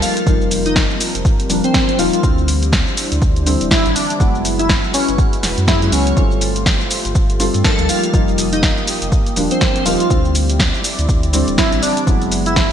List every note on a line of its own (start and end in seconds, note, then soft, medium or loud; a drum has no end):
0.00 0.24 F3 medium
0.00 0.24 G3 medium
0.00 4.16 G3 medium
0.00 0.24 A#3 medium
0.00 2.21 C4 medium
0.00 0.24 D#4 medium
0.00 2.20 F4 medium
0.00 0.17 F4 medium
0.00 2.21 A#4 medium
0.00 open hi-hat medium
0.00 shaker medium
0.17 closed hi-hat medium
0.17 shaker soft
0.26 0.85 F1 medium
0.26 1.47 F3 medium
0.26 1.47 G3 medium
0.26 1.47 A#3 medium
0.26 1.47 D#4 medium
0.26 kick loud
0.26 shaker soft
0.41 shaker soft
0.51 open hi-hat loud
0.51 shaker medium
0.66 0.77 D#4 medium
0.66 closed hi-hat medium
0.66 shaker soft
0.76 kick loud
0.76 snare loud
0.76 shaker soft
0.91 shaker soft
1.01 open hi-hat loud
1.01 shaker medium
1.15 1.23 F1 medium
1.15 closed hi-hat medium
1.15 shaker soft
1.25 kick loud
1.25 shaker soft
1.40 closed hi-hat medium
1.40 shaker soft
1.50 1.61 D#1 loud
1.50 1.96 F3 medium
1.50 1.96 G3 medium
1.50 1.96 A#3 medium
1.50 1.97 D4 medium
1.50 open hi-hat loud
1.50 shaker medium
1.64 1.86 C4 medium
1.64 closed hi-hat medium
1.64 shaker soft
1.74 kick loud
1.74 snare loud
1.74 shaker soft
1.89 1.97 C4 loud
1.89 closed hi-hat medium
1.89 shaker soft
1.99 2.10 D#1 medium
1.99 2.21 F3 medium
1.99 2.21 G3 medium
1.99 2.21 A#3 medium
1.99 2.21 D#4 loud
1.99 2.08 F4 medium
1.99 open hi-hat medium
1.99 shaker medium
2.13 2.20 F4 medium
2.13 closed hi-hat medium
2.13 shaker soft
2.23 2.82 D2 loud
2.23 3.44 D3 medium
2.23 3.44 E3 medium
2.23 3.44 G3 medium
2.23 3.44 C4 medium
2.23 4.18 D4 medium
2.23 6.13 E4 medium
2.23 4.18 C5 medium
2.23 kick loud
2.23 shaker soft
2.38 shaker soft
2.48 open hi-hat loud
2.48 shaker medium
2.63 closed hi-hat medium
2.63 shaker soft
2.73 kick loud
2.73 snare loud
2.73 shaker soft
2.87 shaker soft
2.97 open hi-hat loud
2.97 shaker medium
3.12 3.20 D2 medium
3.12 closed hi-hat medium
3.12 shaker soft
3.22 3.56 D2 medium
3.22 kick loud
3.22 shaker soft
3.36 closed hi-hat soft
3.36 shaker soft
3.46 3.68 D3 medium
3.46 3.69 E3 medium
3.46 3.69 G3 medium
3.46 3.69 C4 medium
3.46 open hi-hat loud
3.46 shaker medium
3.61 3.69 D1 medium
3.61 closed hi-hat medium
3.61 shaker soft
3.71 4.18 D3 medium
3.71 4.18 E3 medium
3.71 4.18 G3 medium
3.71 4.18 C4 medium
3.71 3.94 E4 medium
3.71 kick loud
3.71 snare loud
3.71 shaker soft
3.86 3.93 A1 medium
3.86 closed hi-hat medium
3.86 shaker soft
3.95 4.11 D4 medium
3.95 open hi-hat loud
3.95 shaker medium
4.10 closed hi-hat medium
4.10 shaker soft
4.20 4.79 F#1 loud
4.20 5.41 F#3 medium
4.20 5.41 G#3 medium
4.20 6.15 G#3 medium
4.20 5.41 B3 medium
4.20 5.41 E4 medium
4.20 6.15 F#4 medium
4.20 6.15 B4 medium
4.20 kick loud
4.20 shaker soft
4.35 shaker soft
4.45 open hi-hat loud
4.45 shaker medium
4.59 4.70 E4 medium
4.59 closed hi-hat medium
4.59 shaker soft
4.69 kick loud
4.69 snare loud
4.69 shaker soft
4.84 shaker soft
4.94 5.09 C#4 loud
4.94 open hi-hat loud
4.94 shaker medium
5.08 5.16 F#1 medium
5.08 closed hi-hat medium
5.08 shaker soft
5.18 kick loud
5.18 shaker soft
5.33 closed hi-hat soft
5.33 shaker soft
5.43 5.55 E1 medium
5.43 snare medium
5.43 open hi-hat loud
5.43 shaker medium
5.58 5.89 F#2 medium
5.58 closed hi-hat medium
5.58 shaker soft
5.68 5.79 F#3 medium
5.68 5.79 G#3 medium
5.68 5.79 B3 medium
5.68 5.77 E4 medium
5.68 5.79 G#4 medium
5.68 kick loud
5.68 snare loud
5.68 shaker soft
5.82 6.14 F#3 medium
5.82 6.14 G#3 medium
5.82 6.14 B3 medium
5.82 5.89 E4 medium
5.82 6.15 F#4 loud
5.82 closed hi-hat soft
5.82 shaker soft
5.92 6.13 C#2 loud
5.92 6.23 C#4 medium
5.92 open hi-hat medium
5.92 shaker medium
6.07 closed hi-hat medium
6.07 shaker soft
6.17 6.76 G1 medium
6.17 7.37 G3 medium
6.17 7.87 A3 medium
6.17 7.37 A3 medium
6.17 7.37 C4 medium
6.17 10.06 F4 medium
6.17 7.38 F4 medium
6.17 12.03 G4 medium
6.17 7.87 C5 medium
6.17 kick loud
6.17 shaker soft
6.32 shaker soft
6.41 open hi-hat loud
6.41 shaker medium
6.56 closed hi-hat medium
6.56 shaker soft
6.66 kick loud
6.66 snare loud
6.66 shaker soft
6.81 shaker soft
6.91 open hi-hat loud
6.91 shaker medium
7.05 7.13 G1 medium
7.05 closed hi-hat medium
7.05 shaker soft
7.15 7.49 G1 medium
7.15 kick loud
7.15 shaker soft
7.30 closed hi-hat soft
7.30 shaker soft
7.40 7.62 G3 medium
7.40 7.62 A3 medium
7.40 7.62 C4 medium
7.40 7.62 F4 loud
7.40 open hi-hat loud
7.40 shaker medium
7.54 7.62 G2 medium
7.54 closed hi-hat medium
7.54 shaker soft
7.64 8.11 F3 medium
7.64 8.11 G3 medium
7.64 8.11 A#3 medium
7.64 8.11 D#4 medium
7.64 7.87 A4 loud
7.64 kick loud
7.64 snare loud
7.64 shaker soft
7.79 7.87 D2 medium
7.79 closed hi-hat medium
7.79 shaker soft
7.89 10.08 A#3 medium
7.89 8.04 F4 medium
7.89 10.08 D#6 medium
7.89 open hi-hat medium
7.89 shaker medium
8.03 closed hi-hat medium
8.03 shaker soft
8.13 8.72 F1 loud
8.13 9.34 F3 medium
8.13 9.34 G3 medium
8.13 9.34 A#3 medium
8.13 9.34 D#4 loud
8.13 kick loud
8.13 shaker soft
8.28 shaker soft
8.38 open hi-hat loud
8.38 shaker medium
8.53 8.64 D#4 medium
8.53 closed hi-hat medium
8.53 shaker soft
8.63 kick loud
8.63 snare loud
8.63 shaker soft
8.77 shaker soft
8.87 open hi-hat medium
8.87 shaker medium
9.02 9.10 F1 medium
9.02 closed hi-hat medium
9.02 shaker soft
9.12 kick loud
9.12 shaker soft
9.26 closed hi-hat medium
9.26 shaker soft
9.36 9.48 D#1 loud
9.36 9.83 F3 medium
9.36 9.83 G3 medium
9.36 9.83 A#3 medium
9.36 9.83 D4 medium
9.36 open hi-hat loud
9.36 shaker medium
9.51 9.73 C4 medium
9.51 closed hi-hat medium
9.51 shaker soft
9.61 kick loud
9.61 snare loud
9.61 shaker soft
9.76 9.84 C4 medium
9.76 closed hi-hat medium
9.76 shaker soft
9.86 9.97 D#1 medium
9.86 10.08 F3 medium
9.86 10.08 G3 medium
9.86 10.08 A#3 medium
9.86 10.08 D#4 loud
9.86 9.95 F4 medium
9.86 open hi-hat medium
9.86 shaker medium
10.00 10.07 F4 medium
10.00 closed hi-hat medium
10.00 shaker soft
10.10 10.69 D2 loud
10.10 11.31 D3 medium
10.10 11.31 E3 medium
10.10 11.31 G3 medium
10.10 12.05 C4 medium
10.10 11.31 C4 medium
10.10 12.05 E4 medium
10.10 12.05 D5 medium
10.10 kick loud
10.10 shaker soft
10.25 shaker soft
10.35 open hi-hat loud
10.35 shaker medium
10.50 closed hi-hat medium
10.50 shaker soft
10.60 kick loud
10.60 snare loud
10.60 shaker soft
10.74 shaker soft
10.84 open hi-hat medium
10.84 shaker medium
10.99 11.07 D2 medium
10.99 closed hi-hat medium
10.99 shaker soft
11.09 11.43 D2 medium
11.09 kick loud
11.09 shaker soft
11.23 closed hi-hat medium
11.23 shaker soft
11.33 11.55 D3 medium
11.33 11.55 E3 medium
11.33 11.56 G3 medium
11.33 11.56 C4 medium
11.33 open hi-hat loud
11.33 shaker medium
11.48 11.56 D1 medium
11.48 closed hi-hat medium
11.48 shaker soft
11.58 12.05 D3 medium
11.58 12.05 E3 medium
11.58 12.05 G3 medium
11.58 12.05 C4 medium
11.58 11.81 E4 medium
11.58 kick loud
11.58 snare loud
11.58 shaker soft
11.72 11.80 A1 medium
11.72 closed hi-hat medium
11.72 shaker soft
11.82 11.98 D4 medium
11.82 open hi-hat medium
11.82 shaker medium
11.97 closed hi-hat medium
11.97 shaker soft
12.07 12.66 F#1 medium
12.07 12.72 F#3 medium
12.07 12.72 G#3 medium
12.07 12.72 B3 medium
12.07 12.72 E4 medium
12.07 12.72 F#4 medium
12.07 12.72 G#4 medium
12.07 12.72 F#5 medium
12.07 kick loud
12.07 shaker soft
12.22 closed hi-hat soft
12.22 shaker soft
12.32 open hi-hat loud
12.32 shaker medium
12.46 12.57 E4 medium
12.46 closed hi-hat medium
12.46 shaker soft
12.56 kick loud
12.56 snare loud
12.56 shaker soft